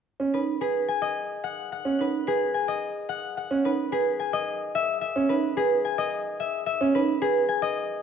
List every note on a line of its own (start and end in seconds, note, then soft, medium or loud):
0.20 0.38 C#4 medium
0.34 0.52 D#4 soft
0.34 1.99 B4 soft
0.61 2.26 G#4 medium
0.61 0.79 B4 medium
0.88 2.53 G#5 medium
1.02 2.67 D#5 medium
1.44 1.71 F#5 medium
1.72 3.08 F#5 medium
1.85 2.03 C#4 medium
1.99 2.17 D#4 soft
1.99 3.64 B4 soft
2.27 3.91 G#4 medium
2.27 2.45 B4 medium
2.54 4.18 G#5 soft
2.68 3.53 D#5 medium
3.09 3.36 F#5 medium
3.37 3.53 F#5 soft
3.51 3.68 C#4 medium
3.65 3.82 D#4 soft
3.65 5.28 B4 medium
3.92 5.56 G#4 medium
3.92 4.10 B4 medium
4.20 5.84 G#5 soft
4.33 5.97 D#5 medium
4.75 5.00 E5 medium
5.01 6.39 E5 medium
5.16 5.34 C#4 medium
5.29 5.47 D#4 medium
5.29 6.94 B4 medium
5.57 6.83 G#4 medium
5.57 5.75 B4 medium
5.85 6.83 G#5 medium
5.98 7.61 D#5 medium
6.40 6.65 E5 medium
6.66 6.83 E5 medium
6.81 6.99 C#4 medium
6.95 7.12 D#4 medium
6.95 8.02 B4 medium
7.22 8.02 G#4 medium
7.22 7.40 B4 medium
7.49 8.02 G#5 medium
7.62 8.02 D#5 medium